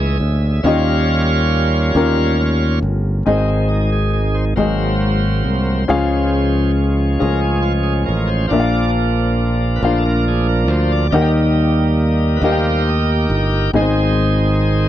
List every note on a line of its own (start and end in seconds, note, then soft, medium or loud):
0.00 0.17 C#2 medium
0.00 0.67 C#3 medium
0.00 0.17 E3 soft
0.00 0.18 C#4 soft
0.00 0.64 C#4 medium
0.00 0.66 D#4 soft
0.00 0.67 E4 medium
0.00 0.61 G#4 medium
0.00 0.67 G#4 medium
0.00 0.18 D#5 soft
0.00 0.66 D#5 medium
0.00 0.69 E5 medium
0.20 0.61 D2 medium
0.63 1.92 D#2 medium
0.63 1.92 D#3 medium
0.63 2.38 G3 medium
0.63 2.38 C#4 soft
0.63 1.44 C#4 medium
0.63 2.39 F4 medium
0.63 1.45 F4 medium
0.63 1.45 G4 medium
0.63 2.79 A#4 medium
0.63 2.79 C#5 medium
0.63 1.45 D#5 medium
0.63 2.79 F5 medium
1.95 2.79 D#2 medium
1.95 2.75 C#4 medium
1.95 2.75 F4 medium
1.95 2.76 G4 medium
1.95 2.76 A#4 medium
2.39 2.79 G3 soft
2.39 2.79 C#4 soft
2.39 2.80 F4 soft
2.83 3.23 G1 medium
3.26 4.54 G#1 medium
3.26 4.54 G#2 medium
3.26 4.54 D#3 soft
3.26 4.54 G#3 soft
3.26 4.06 C4 medium
3.26 3.47 C4 medium
3.26 4.06 D#4 medium
3.26 3.50 D#4 medium
3.26 4.07 G#4 medium
3.26 4.07 D#5 medium
3.48 3.69 C4 medium
3.69 3.90 D#4 medium
3.92 4.12 G#4 medium
4.13 4.36 G#4 medium
4.34 4.45 C5 medium
4.56 5.41 G#1 medium
4.56 5.85 G#2 medium
4.56 5.84 F#3 soft
4.56 5.84 A#3 soft
4.56 5.37 C4 medium
4.56 5.85 C4 soft
4.56 5.37 F#4 soft
4.56 5.38 G#4 soft
4.56 6.72 C5 medium
4.56 5.38 D#5 medium
5.44 5.85 C2 medium
5.88 7.16 C#2 medium
5.88 7.16 C#3 medium
5.88 8.03 F3 medium
5.88 8.04 G#3 soft
5.88 6.68 C#4 medium
5.88 8.04 C#4 medium
5.88 6.68 F4 medium
5.88 6.69 G#4 medium
5.88 6.69 F5 medium
7.19 8.04 C#2 medium
7.19 7.99 C#4 medium
7.19 8.00 F4 medium
7.19 8.00 G#4 medium
7.19 7.41 A#4 medium
7.19 8.00 G#5 medium
7.41 7.64 G#4 medium
7.63 7.73 F4 medium
7.83 7.94 G#4 medium
8.04 8.46 F3 soft
8.04 8.46 G#3 soft
8.04 8.46 C#4 soft
8.04 8.29 A#4 medium
8.09 8.48 A1 medium
8.27 8.51 C5 medium
8.47 9.78 A#1 medium
8.47 11.07 F3 medium
8.47 11.07 A#3 soft
8.47 11.08 D4 medium
8.47 8.91 D5 medium
8.51 9.79 A#2 medium
8.51 9.31 D4 medium
8.51 9.31 F4 medium
8.51 9.31 A#4 medium
8.51 8.59 E5 medium
8.60 9.35 F5 medium
9.76 9.82 B4 medium
9.83 10.68 A#1 medium
9.83 10.62 D4 medium
9.83 10.62 F4 medium
9.83 10.62 A#4 medium
9.83 9.98 C5 medium
9.83 10.63 F5 medium
9.98 10.04 A4 medium
10.05 10.25 A#4 medium
10.28 10.47 G#4 medium
10.49 10.71 A#4 medium
10.68 11.09 D2 medium
10.68 10.92 C5 medium
10.93 11.14 D5 loud
11.11 12.39 D#2 loud
11.11 12.40 D#3 medium
11.11 12.42 G3 medium
11.11 12.43 A#3 soft
11.11 12.44 D#4 medium
11.11 11.92 D#4 medium
11.11 11.93 G4 medium
11.11 11.32 A#4 medium
11.11 11.93 A#4 medium
11.11 11.20 F#5 medium
11.21 11.97 G5 medium
12.37 12.44 B4 medium
12.42 13.26 D#2 loud
12.42 12.83 G3 soft
12.42 12.84 A#3 soft
12.42 13.23 D#4 medium
12.42 13.71 D#4 medium
12.42 13.23 G4 medium
12.42 13.71 G4 medium
12.42 13.23 A#4 medium
12.42 13.71 A#4 medium
12.42 12.51 F5 medium
12.46 12.90 C5 medium
12.51 13.27 G5 medium
12.89 13.11 D#5 medium
13.12 13.72 G5 loud
13.30 13.70 G1 medium
13.73 14.89 G#1 medium
13.73 14.89 G#2 medium
13.73 14.89 D#3 soft
13.73 14.89 G#3 soft
13.73 13.80 B3 medium
13.73 14.89 C4 soft
13.73 14.54 D#4 medium
13.73 14.89 D#4 medium
13.73 14.54 G#4 medium
13.73 14.89 G#4 medium
13.73 14.89 C5 medium
13.73 14.54 D#5 medium
13.80 14.57 C4 medium